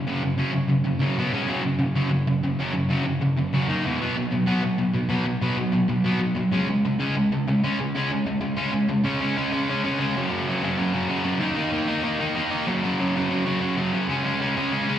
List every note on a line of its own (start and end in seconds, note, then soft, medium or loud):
0.07 0.22 F#2 medium
0.07 0.22 C#3 medium
0.07 0.22 F#3 medium
0.23 0.37 F#2 medium
0.23 0.37 C#3 medium
0.38 0.51 F#2 medium
0.38 0.52 C#3 medium
0.38 0.53 F#3 medium
0.52 0.67 F#2 medium
0.52 0.68 C#3 medium
0.68 0.83 F#2 medium
0.68 0.84 C#3 medium
0.85 0.99 F#2 medium
0.85 1.00 C#3 medium
1.01 1.16 F#2 medium
1.01 1.16 C#3 medium
1.01 1.17 F#3 medium
1.18 1.32 B2 medium
1.18 1.33 F#3 loud
1.18 1.33 B3 loud
1.33 1.47 C#3 medium
1.33 1.48 G#3 medium
1.33 1.48 C#4 loud
1.47 1.62 F#2 medium
1.47 1.62 C#3 medium
1.47 1.63 F#3 medium
1.63 1.78 F#2 medium
1.63 1.78 C#3 medium
1.79 1.94 F#2 medium
1.79 1.94 C#3 medium
1.95 2.10 F#2 medium
1.95 2.10 C#3 loud
1.95 2.11 F#3 medium
2.11 2.26 F#2 medium
2.11 2.25 C#3 medium
2.27 2.42 F#2 medium
2.27 2.42 C#3 medium
2.44 2.58 F#2 medium
2.44 2.58 C#3 medium
2.59 2.72 F#2 medium
2.59 2.72 C#3 medium
2.59 2.74 F#3 loud
2.73 2.88 F#2 medium
2.73 2.88 C#3 medium
2.89 3.03 F#2 medium
2.89 3.04 C#3 medium
2.89 3.05 F#3 medium
3.05 3.19 F#2 medium
3.05 3.20 C#3 medium
3.21 3.35 F#2 medium
3.21 3.36 C#3 medium
3.37 3.51 F#2 medium
3.37 3.52 C#3 medium
3.53 3.68 F#2 medium
3.53 3.68 C#3 medium
3.53 3.68 F#3 medium
3.68 3.83 D#3 medium
3.68 3.84 A#3 medium
3.68 3.84 D#4 loud
3.84 3.99 E2 medium
3.84 3.99 B2 medium
3.84 4.00 E3 medium
4.01 4.14 B2 medium
4.01 4.15 F#3 medium
4.01 4.16 B3 medium
4.15 4.30 B2 medium
4.15 4.30 F#3 medium
4.31 4.45 B2 medium
4.31 4.46 F#3 medium
4.46 4.62 B2 medium
4.46 4.62 F#3 medium
4.46 4.63 B3 loud
4.63 4.77 B2 medium
4.63 4.78 F#3 medium
4.78 4.92 B2 medium
4.78 4.93 F#3 medium
4.94 5.08 B2 medium
4.94 5.08 F#3 medium
5.09 5.25 B2 medium
5.09 5.25 F#3 medium
5.09 5.25 B3 medium
5.26 5.40 B2 medium
5.26 5.41 F#3 medium
5.41 5.55 B2 medium
5.41 5.56 F#3 medium
5.41 5.58 B3 medium
5.56 5.71 B2 medium
5.56 5.72 F#3 medium
5.72 5.87 B2 medium
5.72 5.88 F#3 medium
5.88 6.03 B2 medium
5.88 6.04 F#3 medium
6.04 6.18 B2 medium
6.04 6.19 F#3 medium
6.04 6.21 B3 medium
6.20 6.33 B2 medium
6.20 6.35 F#3 loud
6.35 6.50 B2 medium
6.35 6.51 F#3 medium
6.52 6.67 C#3 medium
6.52 6.67 G#3 loud
6.52 6.67 C#4 loud
6.68 6.83 C#3 medium
6.68 6.83 G#3 medium
6.85 6.98 C#3 medium
6.85 6.98 G#3 medium
6.99 7.14 C#3 loud
6.99 7.15 G#3 medium
6.99 7.15 C#4 medium
7.16 7.30 C#3 medium
7.16 7.31 G#3 medium
7.32 7.46 C#3 medium
7.32 7.46 G#3 medium
7.48 7.62 C#3 medium
7.48 7.62 G#3 medium
7.64 7.78 C#3 medium
7.64 7.79 G#3 medium
7.64 7.79 C#4 medium
7.80 7.94 C#3 medium
7.80 7.94 G#3 medium
7.95 8.10 C#3 medium
7.95 8.10 G#3 medium
7.95 8.11 C#4 medium
8.12 8.26 C#3 medium
8.12 8.25 G#3 medium
8.27 8.40 C#3 medium
8.27 8.40 G#3 medium
8.41 8.56 C#3 medium
8.41 8.56 G#3 medium
8.57 8.71 C#3 medium
8.57 8.71 G#3 medium
8.57 8.73 C#4 medium
8.72 8.87 C#3 medium
8.72 8.87 G#3 loud
8.89 9.03 C#3 medium
8.89 9.04 G#3 medium
9.04 9.21 C#3 loud
9.04 9.20 G#3 loud
9.04 9.21 C#4 loud
9.21 9.36 C#3 medium
9.21 9.36 G#3 medium
9.21 9.38 C#4 medium
9.37 9.52 C#3 medium
9.37 9.52 G#3 loud
9.37 9.51 C#4 loud
9.52 9.68 C#3 medium
9.52 9.68 G#3 medium
9.52 9.69 C#4 loud
9.69 9.83 C#3 medium
9.69 9.84 G#3 medium
9.69 9.82 C#4 medium
9.84 9.98 C#3 medium
9.84 9.99 G#3 medium
9.84 9.99 C#4 medium
9.99 10.14 C#3 loud
9.99 10.15 G#3 loud
9.99 10.15 C#4 loud
10.16 10.30 F#2 loud
10.16 10.29 C#3 loud
10.16 10.30 F#3 loud
10.30 10.46 F#2 medium
10.30 10.47 C#3 medium
10.30 10.48 F#3 loud
10.47 10.62 F#2 medium
10.47 10.62 C#3 loud
10.47 10.62 F#3 medium
10.63 10.76 F#2 loud
10.63 10.77 C#3 loud
10.63 10.78 F#3 loud
10.77 10.93 F#2 medium
10.77 10.93 C#3 loud
10.77 10.93 F#3 loud
10.94 11.08 F#2 medium
10.94 11.08 C#3 medium
10.94 11.10 F#3 medium
11.09 11.24 F#2 medium
11.09 11.24 C#3 medium
11.09 11.24 F#3 medium
11.24 11.40 F#2 medium
11.24 11.40 C#3 medium
11.24 11.40 F#3 loud
11.40 11.55 D#3 medium
11.40 11.56 A#3 loud
11.40 11.54 D#4 loud
11.55 11.70 D#3 medium
11.55 11.72 A#3 medium
11.55 11.72 D#4 loud
11.71 11.88 D#3 medium
11.71 11.88 A#3 medium
11.71 11.86 D#4 loud
11.87 12.02 D#3 medium
11.87 12.03 A#3 loud
11.87 12.03 D#4 loud
12.03 12.20 D#3 medium
12.03 12.19 A#3 medium
12.03 12.19 D#4 loud
12.20 12.34 D#3 medium
12.20 12.35 A#3 medium
12.20 12.35 D#4 medium
12.35 12.51 D#3 medium
12.35 12.50 A#3 loud
12.35 12.50 D#4 loud
12.51 12.67 D#3 medium
12.51 12.66 A#3 medium
12.51 12.66 D#4 loud
12.67 12.84 F#2 loud
12.67 12.83 C#3 medium
12.67 12.82 F#3 loud
12.83 12.98 F#2 medium
12.83 12.98 C#3 loud
12.83 12.99 F#3 loud
12.99 13.15 F#2 medium
12.99 13.15 C#3 medium
12.99 13.14 F#3 medium
13.15 13.28 F#2 medium
13.15 13.29 C#3 loud
13.15 13.29 F#3 loud
13.29 13.45 F#2 medium
13.29 13.45 C#3 medium
13.29 13.44 F#3 loud
13.45 13.59 F#2 medium
13.45 13.60 C#3 medium
13.45 13.61 F#3 medium
13.60 13.76 F#2 medium
13.60 13.76 C#3 medium
13.60 13.76 F#3 loud
13.77 13.92 F#2 medium
13.77 13.93 C#3 loud
13.77 13.93 F#3 loud
13.93 14.08 F#2 medium
13.93 14.07 C#3 medium
13.93 14.09 F#3 medium
14.09 14.25 C#3 loud
14.09 14.24 G#3 loud
14.09 14.24 C#4 loud
14.25 14.40 C#3 medium
14.25 14.41 G#3 medium
14.25 14.41 C#4 medium
14.41 14.56 C#3 loud
14.41 14.56 G#3 loud
14.41 14.55 C#4 loud
14.56 14.71 C#3 medium
14.56 14.71 G#3 loud
14.56 14.71 C#4 medium
14.72 14.88 C#3 medium
14.72 14.88 G#3 medium
14.72 14.87 C#4 medium
14.88 14.99 C#3 medium
14.88 14.99 G#3 medium
14.88 14.99 C#4 medium